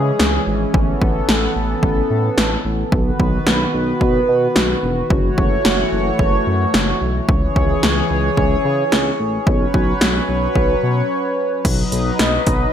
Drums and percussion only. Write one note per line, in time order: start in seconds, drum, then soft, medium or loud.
0.20 snare medium
0.74 kick loud
1.02 kick medium
1.29 snare loud
1.83 kick medium
2.38 snare loud
2.92 kick loud
3.20 kick medium
3.47 snare loud
4.01 kick medium
4.56 snare loud
5.10 kick loud
5.38 kick medium
5.65 snare loud
6.19 kick medium
6.74 snare loud
7.29 kick loud
7.56 kick medium
7.83 snare loud
8.37 kick medium
8.92 snare loud
9.47 kick loud
9.74 kick medium
10.01 snare loud
10.56 kick medium
11.65 kick loud
11.65 closed hi-hat medium
11.65 crash loud
11.92 closed hi-hat medium
12.19 snare loud
12.19 closed hi-hat medium
12.47 kick medium
12.47 closed hi-hat medium